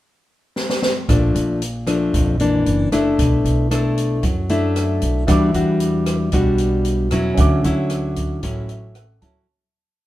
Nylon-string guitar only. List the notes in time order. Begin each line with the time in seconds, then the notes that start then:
1.08 A#2 F3 A3 D4
1.87 F3 A3 D4
2.15 F2
2.40 E3 A#3 D4
2.92 A3 D4 E4
3.18 B2
3.71 A3 D4 E4
4.23 F#3
4.50 A3 D4 E4
5.28 E3 G3 D4 F#4
5.54 G3 D4 F#4
6.33 B2 G3 D4 F#4
7.12 F#3 C#4 E4
7.39 D3
7.65 F#3 C#4 E4
8.43 A2 F#3 C#4 E4
9.22 F#3 C#4 E4